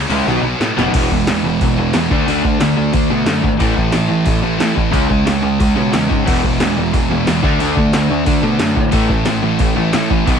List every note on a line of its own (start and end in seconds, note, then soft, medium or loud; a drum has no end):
0.09 0.20 C#2 medium
0.09 0.25 C#3 loud
0.09 0.25 G#3 loud
0.09 0.25 C#4 loud
0.09 0.25 E4 loud
0.09 crash medium
0.27 0.37 B1 medium
0.27 0.41 B2 medium
0.27 0.41 D#3 loud
0.27 0.42 F#3 loud
0.27 0.42 B3 loud
0.27 0.42 D#4 loud
0.27 snare medium
0.42 0.53 B1 medium
0.42 0.59 B2 medium
0.42 0.60 F#3 medium
0.42 0.60 B3 loud
0.60 0.71 A2 medium
0.60 0.77 B2 loud
0.60 0.77 F#3 loud
0.60 0.76 B3 loud
0.60 snare loud
0.77 0.88 F#1 medium
0.77 0.90 B2 loud
0.77 0.91 D#3 medium
0.77 0.91 F#3 medium
0.77 0.91 B3 loud
0.77 0.92 D#4 loud
0.77 snare medium
0.93 1.08 E1 loud
0.93 1.09 E2 medium
0.93 1.76 E2 medium
0.93 1.09 B2 medium
0.93 1.77 B2 medium
0.93 1.10 E3 medium
0.93 1.10 G#3 medium
0.93 1.11 B3 loud
0.93 kick loud
0.93 open hi-hat medium
0.93 crash loud
1.10 1.25 E1 medium
1.10 1.26 E2 medium
1.10 1.26 B2 medium
1.10 1.26 E3 medium
1.10 1.26 G#3 medium
1.10 kick medium
1.27 1.41 E1 medium
1.27 1.43 E2 medium
1.27 1.43 B2 medium
1.27 1.42 E3 medium
1.27 1.43 G#3 medium
1.27 snare loud
1.27 open hi-hat medium
1.44 1.58 E1 medium
1.44 1.60 E2 medium
1.44 1.60 B2 medium
1.44 1.59 E3 medium
1.44 1.60 G#3 medium
1.61 1.75 E1 medium
1.61 1.77 E2 medium
1.61 1.77 B2 medium
1.61 1.76 E3 medium
1.61 1.76 G#3 medium
1.61 kick loud
1.61 open hi-hat medium
1.77 1.91 E1 medium
1.77 1.93 E2 medium
1.77 1.92 E2 medium
1.77 1.93 B2 medium
1.77 1.93 E3 medium
1.77 1.93 G#3 medium
1.93 2.09 E2 medium
1.93 2.08 E2 medium
1.93 2.10 E2 medium
1.93 2.10 B2 medium
1.93 2.10 E3 medium
1.93 2.10 G#3 medium
1.93 snare loud
1.93 open hi-hat medium
2.10 2.24 D2 medium
2.10 2.26 D3 medium
2.10 2.26 A3 medium
2.10 2.27 D4 loud
2.10 kick loud
2.27 2.41 D2 loud
2.27 2.42 D3 medium
2.27 2.42 A3 loud
2.27 2.43 D4 medium
2.27 open hi-hat medium
2.43 2.58 D2 medium
2.43 2.58 D3 medium
2.43 2.59 A3 medium
2.43 kick medium
2.59 2.74 D2 medium
2.59 2.75 D3 medium
2.59 2.76 A3 medium
2.59 snare loud
2.59 open hi-hat medium
2.76 2.91 D2 medium
2.76 2.92 D3 medium
2.76 2.92 A3 medium
2.93 3.08 D2 medium
2.93 3.08 D3 medium
2.93 3.09 A3 medium
2.93 3.09 D4 medium
2.93 kick loud
2.93 open hi-hat medium
3.10 3.24 B2 medium
3.10 3.25 D3 medium
3.10 3.26 A3 medium
3.10 3.43 D4 loud
3.26 3.40 F#2 loud
3.26 3.41 D3 medium
3.26 3.41 A3 medium
3.26 snare loud
3.26 open hi-hat medium
3.42 3.58 G#1 medium
3.42 3.58 D3 medium
3.42 3.58 A3 medium
3.42 kick medium
3.59 3.74 A1 loud
3.59 3.75 A2 medium
3.59 3.76 E3 loud
3.59 3.76 A3 medium
3.59 kick loud
3.59 open hi-hat medium
3.76 3.91 A1 medium
3.76 3.90 A2 medium
3.76 3.90 E3 medium
3.76 kick medium
3.91 4.08 A1 medium
3.91 4.07 A2 medium
3.91 4.07 E3 medium
3.91 snare loud
3.91 open hi-hat medium
4.09 4.25 A1 medium
4.09 4.25 A2 medium
4.09 4.24 E3 medium
4.26 4.41 A1 medium
4.26 4.41 A2 medium
4.26 4.41 E3 medium
4.26 kick loud
4.26 open hi-hat medium
4.42 4.58 A1 medium
4.42 4.58 A2 medium
4.42 4.58 E3 medium
4.42 4.58 A3 loud
4.60 4.74 A2 medium
4.60 4.75 A2 medium
4.60 4.75 E3 medium
4.60 4.93 A3 medium
4.60 snare loud
4.60 open hi-hat medium
4.75 4.91 A1 medium
4.75 4.91 A2 medium
4.75 4.91 E3 medium
4.75 kick medium
4.92 5.07 C#2 loud
4.92 5.08 C#3 medium
4.92 5.08 G#3 loud
4.92 5.09 C#4 loud
4.92 kick loud
4.92 open hi-hat medium
5.09 5.24 C#2 medium
5.09 5.25 C#3 medium
5.09 5.25 G#3 medium
5.09 kick medium
5.26 5.41 C#2 medium
5.26 5.41 C#3 medium
5.26 5.42 G#3 loud
5.26 snare loud
5.26 open hi-hat medium
5.42 5.57 C#2 loud
5.42 5.58 C#3 medium
5.42 5.58 G#3 loud
5.59 5.74 C#2 medium
5.59 5.74 C#3 medium
5.59 5.75 G#3 medium
5.59 kick loud
5.59 open hi-hat medium
5.75 5.91 B2 medium
5.75 5.91 C#3 medium
5.75 5.92 G#3 medium
5.75 5.92 C#4 medium
5.92 6.08 E2 medium
5.92 6.08 C#3 medium
5.92 6.08 G#3 medium
5.92 6.26 C#4 medium
5.92 snare loud
5.92 open hi-hat medium
6.10 6.24 G#2 medium
6.10 6.25 C#3 medium
6.10 6.25 G#3 medium
6.10 kick medium
6.25 6.41 E1 loud
6.25 6.42 E2 medium
6.25 7.08 E2 medium
6.25 6.42 B2 loud
6.25 7.09 B2 medium
6.25 6.42 E3 medium
6.25 6.43 G#3 medium
6.25 6.43 B3 medium
6.25 kick loud
6.25 crash loud
6.43 6.58 E1 medium
6.43 6.58 E2 medium
6.43 6.59 B2 medium
6.43 6.59 E3 medium
6.43 6.59 G#3 medium
6.43 kick medium
6.60 6.74 E1 medium
6.60 6.75 E2 medium
6.60 6.76 B2 medium
6.60 6.75 E3 medium
6.60 6.75 G#3 medium
6.60 snare loud
6.60 open hi-hat medium
6.77 6.91 E1 medium
6.77 6.92 E2 medium
6.77 6.92 B2 medium
6.77 6.92 E3 medium
6.77 6.92 G#3 medium
6.93 7.07 E1 medium
6.93 7.08 E2 medium
6.93 7.08 B2 medium
6.93 7.08 E3 medium
6.93 7.08 G#3 medium
6.93 kick loud
6.93 open hi-hat medium
7.11 7.25 E1 medium
7.11 7.25 E2 medium
7.11 7.24 E2 medium
7.11 7.26 B2 medium
7.11 7.25 E3 medium
7.11 7.26 G#3 medium
7.25 7.42 E2 medium
7.25 7.41 E2 medium
7.25 7.42 B2 medium
7.25 7.42 E3 medium
7.25 7.42 G#3 medium
7.25 snare loud
7.25 open hi-hat medium
7.42 7.57 D2 loud
7.42 7.58 D3 medium
7.42 7.59 A3 loud
7.42 7.59 D4 loud
7.42 kick loud
7.60 7.75 D2 loud
7.60 7.76 D3 medium
7.60 7.76 A3 loud
7.60 7.76 D4 loud
7.60 open hi-hat medium
7.76 7.91 D2 medium
7.76 7.92 D3 medium
7.76 7.93 A3 medium
7.76 kick medium
7.93 8.08 D2 medium
7.93 8.08 D3 medium
7.93 8.09 A3 medium
7.93 snare loud
7.93 open hi-hat medium
8.10 8.24 D2 medium
8.10 8.25 D3 medium
8.10 8.25 A3 medium
8.26 8.41 D2 medium
8.26 8.41 D3 medium
8.26 8.42 A3 medium
8.26 8.40 D4 medium
8.26 kick loud
8.26 open hi-hat medium
8.42 8.57 B2 loud
8.42 8.58 D3 medium
8.42 8.58 A3 medium
8.42 8.75 D4 medium
8.59 8.74 F#2 loud
8.59 8.75 D3 medium
8.59 8.75 A3 medium
8.59 snare loud
8.59 open hi-hat medium
8.76 8.90 A2 loud
8.76 8.92 D3 medium
8.76 8.92 A3 medium
8.76 kick medium
8.92 9.07 A1 medium
8.92 9.09 A2 medium
8.92 9.09 E3 medium
8.92 9.09 A3 loud
8.92 kick loud
8.92 open hi-hat medium
9.09 9.23 A1 medium
9.09 9.24 A2 medium
9.09 9.24 E3 loud
9.09 kick medium
9.25 9.40 A1 medium
9.25 9.41 A2 medium
9.25 9.41 E3 medium
9.25 snare loud
9.25 open hi-hat medium
9.42 9.57 A1 medium
9.42 9.58 A2 medium
9.42 9.58 E3 medium
9.59 9.74 A1 medium
9.59 9.74 A2 medium
9.59 9.75 E3 medium
9.59 kick loud
9.59 open hi-hat medium
9.75 9.90 A1 medium
9.75 9.91 A2 medium
9.75 9.92 E3 medium
9.75 9.91 A3 medium
9.93 10.08 A2 medium
9.93 10.08 A2 loud
9.93 10.08 E3 medium
9.93 10.26 A3 medium
9.93 snare loud
9.93 open hi-hat medium
10.10 10.24 A1 medium
10.10 10.25 A2 medium
10.10 10.25 E3 medium
10.10 kick medium
10.27 10.39 B1 loud
10.27 10.39 B2 loud
10.27 10.39 D#3 loud
10.27 10.39 F#3 medium
10.27 10.39 B3 loud
10.27 kick loud
10.27 open hi-hat medium